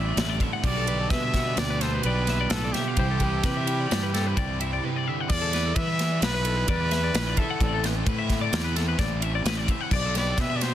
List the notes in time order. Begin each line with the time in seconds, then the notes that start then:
Already playing: A1 E2 E3 G3 A3 C4 D4 E4 E5
0.06 D5
0.16 A1 G2 A2 E3 A3 C4 E4 B4, snare, ride
0.29 D5
0.40 A2 A3 C4 E4 E5, kick, ride
0.53 F#5
0.63 B1 B2 F3 B3 D4 G4 D5, kick, crash
0.77 A4
0.86 D3 B3 D4 G4 B4, ride
1.01 A4
1.10 B2 F3 G3 B3 D4 G4 B4 E5, kick, snare, ride
1.23 E5
1.33 B3 D4 G4, kick, snare, ride
1.47 D5
1.57 D2 B2 F3 B3 D4 G4 D5, snare, ride
1.70 B4
1.81 B2 F3 B3 D4 G4 A4 C5, snare, ride
1.95 B4
2.03 B1 F3 G3 B3 D4 G4 B4 D5, ride
2.27 B3 D4 G4 E5, snare, ride
2.40 F4 D5
2.50 B1 A2 B2 F3 B3 D4 G4 A4 B4, snare, ride
2.64 D5
2.73 B2 D4 G4 E5, snare, ride
2.77 B3
2.88 F5
2.97 C2 C3 E3 G3 C4 E4 G4 C5, kick, ride
3.11 A4
3.20 E3 G3 C4 G4 B4, kick, ride
3.34 A4
3.43 C3 E3 G3 C4 G4 B4, kick, snare, ride
3.57 E5
3.65 G3 C4 E4 G4, ride
3.80 D5
3.89 G2 E3 G3 C4 G4, snare, ride
4.03 B4
4.12 C3 E3 G3 C4 E4 G4 A4, snare, ride
4.27 B4
4.37 C2 E3 G3 C4 G4 D5, kick, ride
4.59 G3 C4 E4 G4 E5, ride
4.73 D5
4.82 C3 E3 G3 C4 G4 B4
4.96 D5
5.06 D3 G3 C4 G4 E5
5.21 F#5
5.28 E2 E3 G3 B3 E4 D5, kick, crash
5.42 A4
5.51 G3 B3 E4 B4, snare, ride
5.66 A4
5.75 E3 G3 B3 E4 B4 E5, kick, ride
5.88 E5
5.98 G3 B3 E4, snare, ride
6.12 D5
6.20 B1 E3 G3 B3 E4 B4, snare, ride
6.34 B4
6.44 E3 G3 B3 E4 A4, ride
6.57 B4
6.67 E2 E3 G3 B3 E4 B4 D5, kick, ride
6.90 G3 B3 E4 E5, snare, ride
7.04 D5
7.14 A#1 E3 G3 B3 E4 B4, snare, ride
7.27 D5
7.37 G3 B3 E4 A4 E5, kick, ride
7.50 F#5
7.60 A1 A2 E3 A3 C4 E4 D5, kick, ride
7.74 A4
7.83 A3 C4 E4 B4, snare, ride
7.96 A4
8.06 A2 E3 A3 C4 E4 B4, kick, ride
8.19 E5
8.30 A3 C4 E4, kick, snare, ride
8.41 D5
8.52 E2 E3 A3 C4 E4, snare, ride
8.64 B4
8.75 A2 E3 A3 C4 E4 A4, snare, ride
8.88 B4
8.97 A1 E3 A3 C4 E4 D5, kick, snare, ride
9.20 A3 C4 E4 E5, ride
9.35 D5
9.43 A1 A2 E3 A3 C4 E4 B4, snare, ride
9.57 D5
9.66 A3 C4 E4 E5, kick, ride
9.81 F#5
9.90 B1 B2 F3 B3 D4 G4 D5, kick, crash
9.95 D5
10.05 A4
10.13 B3 D4 G4 B4, snare, ride
10.17 D5
10.27 A4
10.36 B2 F3 B3 D4 G4 B4, kick, snare, ride
10.40 E5
10.50 E5
10.56 G4 D5
10.61 B3 D4 C5, snare, ride